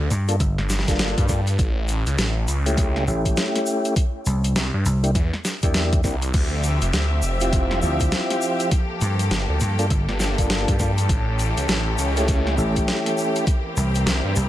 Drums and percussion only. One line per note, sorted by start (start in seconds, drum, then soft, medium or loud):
0.10 closed hi-hat soft
0.10 shaker medium
0.28 closed hi-hat medium
0.28 shaker medium
0.40 kick loud
0.40 closed hi-hat medium
0.40 shaker soft
0.58 snare soft
0.70 snare medium
0.70 shaker loud
0.79 snare soft
0.88 kick medium
0.88 snare soft
0.88 closed hi-hat medium
0.88 shaker medium
0.94 snare soft
0.99 snare loud
0.99 closed hi-hat medium
0.99 shaker soft
1.18 kick loud
1.18 closed hi-hat medium
1.29 kick medium
1.29 snare soft
1.29 shaker medium
1.47 closed hi-hat medium
1.47 shaker soft
1.59 kick loud
1.59 closed hi-hat medium
1.59 shaker soft
1.88 closed hi-hat soft
1.88 shaker medium
2.06 closed hi-hat medium
2.06 shaker soft
2.18 snare loud
2.18 closed hi-hat medium
2.18 shaker soft
2.48 closed hi-hat soft
2.48 shaker medium
2.66 closed hi-hat medium
2.66 shaker soft
2.77 kick loud
2.77 closed hi-hat medium
2.77 shaker soft
2.96 snare soft
3.08 shaker medium
3.25 kick medium
3.25 closed hi-hat medium
3.25 shaker medium
3.36 snare loud
3.36 closed hi-hat medium
3.36 shaker soft
3.55 snare soft
3.55 closed hi-hat medium
3.66 shaker medium
3.85 closed hi-hat medium
3.85 shaker soft
3.96 kick loud
3.96 closed hi-hat medium
3.96 shaker soft
4.26 closed hi-hat soft
4.26 shaker medium
4.44 closed hi-hat medium
4.44 shaker medium
4.56 snare loud
4.56 closed hi-hat medium
4.56 shaker soft
4.86 closed hi-hat soft
4.86 shaker medium
5.04 closed hi-hat medium
5.04 shaker soft
5.15 kick loud
5.15 closed hi-hat medium
5.15 shaker soft
5.33 snare soft
5.45 snare medium
5.45 closed hi-hat soft
5.45 shaker medium
5.62 kick medium
5.62 closed hi-hat medium
5.62 shaker medium
5.74 snare loud
5.74 closed hi-hat medium
5.74 shaker soft
5.93 kick loud
5.93 closed hi-hat medium
6.04 kick medium
6.04 snare soft
6.04 shaker medium
6.22 closed hi-hat medium
6.22 shaker soft
6.34 kick loud
6.34 closed hi-hat medium
6.34 crash medium
6.34 shaker soft
6.64 closed hi-hat soft
6.64 shaker medium
6.81 closed hi-hat medium
6.81 shaker medium
6.93 snare loud
6.93 closed hi-hat medium
6.93 shaker soft
7.22 shaker medium
7.40 closed hi-hat medium
7.40 shaker medium
7.53 kick loud
7.53 closed hi-hat medium
7.53 shaker soft
7.71 snare soft
7.82 shaker medium
8.00 kick medium
8.00 closed hi-hat medium
8.00 shaker medium
8.11 snare loud
8.11 closed hi-hat medium
8.11 shaker soft
8.30 snare soft
8.30 closed hi-hat medium
8.42 shaker loud
8.60 closed hi-hat medium
8.60 shaker soft
8.71 kick loud
8.71 closed hi-hat medium
8.71 shaker soft
9.01 closed hi-hat soft
9.01 shaker medium
9.19 closed hi-hat medium
9.19 shaker medium
9.31 snare loud
9.31 closed hi-hat medium
9.31 shaker soft
9.60 closed hi-hat soft
9.60 shaker loud
9.79 closed hi-hat medium
9.79 shaker medium
9.90 kick loud
9.90 closed hi-hat medium
9.90 shaker soft
10.09 snare soft
10.20 snare medium
10.20 shaker medium
10.38 kick medium
10.38 closed hi-hat medium
10.38 shaker medium
10.50 snare loud
10.50 closed hi-hat medium
10.50 shaker soft
10.68 kick loud
10.68 closed hi-hat medium
10.80 kick medium
10.80 snare soft
10.80 shaker loud
10.98 closed hi-hat medium
10.98 shaker medium
11.09 kick loud
11.09 closed hi-hat medium
11.09 shaker soft
11.39 closed hi-hat soft
11.39 shaker medium
11.57 closed hi-hat medium
11.57 shaker medium
11.68 snare loud
11.68 closed hi-hat medium
11.68 shaker soft
11.98 closed hi-hat soft
11.98 shaker loud
12.17 closed hi-hat medium
12.17 shaker medium
12.28 kick loud
12.28 closed hi-hat medium
12.28 shaker soft
12.47 snare soft
12.58 shaker loud
12.76 kick medium
12.76 closed hi-hat medium
12.76 shaker medium
12.88 snare loud
12.88 closed hi-hat medium
12.88 shaker soft
13.06 snare soft
13.06 closed hi-hat medium
13.18 shaker medium
13.36 closed hi-hat medium
13.36 shaker medium
13.47 kick loud
13.47 closed hi-hat medium
13.47 shaker soft
13.77 closed hi-hat soft
13.77 shaker loud
13.95 closed hi-hat medium
13.95 shaker medium
14.07 snare loud
14.07 closed hi-hat medium
14.07 shaker soft
14.36 closed hi-hat soft
14.36 shaker loud